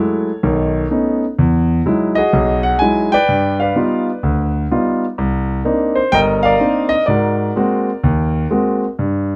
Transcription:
0.00 0.28 F#3 soft
0.00 0.28 G#3 soft
0.00 0.28 A3 soft
0.00 0.29 E4 medium
0.00 1.18 A4 medium
0.00 1.17 C#5 medium
0.43 0.84 B1 medium
0.43 0.84 D#3 medium
0.91 1.23 A3 soft
0.91 1.24 B3 soft
0.91 1.24 C#4 soft
0.91 1.24 D#4 medium
1.39 1.79 E2 medium
1.86 2.19 F#3 medium
1.86 2.19 G#3 soft
1.86 2.19 D#4 soft
1.86 2.19 E4 medium
2.15 3.08 F#4 medium
2.15 3.08 G#4 medium
2.15 2.60 D#5 medium
2.33 2.74 B1 medium
2.63 2.80 F#5 medium
2.79 3.14 F#3 soft
2.79 3.14 G#3 soft
2.79 3.14 D#4 soft
2.79 3.14 E4 medium
2.79 3.12 G#5 medium
3.12 3.60 B4 medium
3.12 3.60 D5 medium
3.12 3.56 G5 loud
3.29 3.69 G2 medium
3.60 4.51 B4 medium
3.60 4.51 D5 soft
3.60 4.04 F5 medium
3.75 4.08 G3 soft
3.75 4.08 B3 soft
3.75 4.09 D#4 soft
3.75 4.09 F4 medium
4.23 4.64 D2 medium
4.71 5.04 G3 soft
4.71 5.04 B3 soft
4.71 5.04 D#4 soft
4.71 5.04 F4 medium
5.18 5.59 C2 medium
5.65 5.98 A#3 medium
5.65 5.98 C4 soft
5.65 5.98 D4 soft
5.65 5.98 D#4 medium
5.96 6.11 C5 medium
6.12 6.54 G1 medium
6.12 6.44 A#4 medium
6.12 6.87 D#5 medium
6.12 6.19 G5 loud
6.43 7.04 A#4 medium
6.43 7.04 D5 medium
6.43 6.92 F5 medium
6.60 6.93 A#3 soft
6.60 6.93 C4 soft
6.60 6.93 D4 soft
6.60 6.94 D#4 medium
6.89 7.05 D#5 medium
7.06 7.49 G#2 medium
7.06 7.55 F#4 soft
7.06 8.79 A#4 medium
7.06 8.77 D5 medium
7.56 7.89 G#3 medium
7.56 7.89 A#3 soft
7.56 7.89 C4 soft
7.56 7.89 F#4 medium
8.04 8.44 D#2 medium
8.51 8.83 G#3 medium
8.51 8.84 A#3 soft
8.51 8.84 C4 soft
8.51 8.84 F#4 medium
8.99 9.36 G2 medium

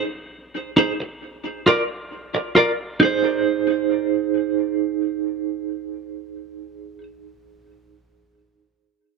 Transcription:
0.77 0.90 D#4 medium
0.77 0.91 G#4 medium
0.77 0.91 C5 medium
1.00 muted clean electric guitar stroke soft
1.66 1.80 F4 medium
1.66 1.81 A#4 medium
1.66 1.81 D5 medium
2.35 muted clean electric guitar stroke soft
2.55 2.69 F4 medium
2.55 2.70 A#4 medium
2.55 2.70 D5 medium
3.00 6.98 D#4 medium
3.00 7.01 G#4 medium
3.05 7.03 C5 medium

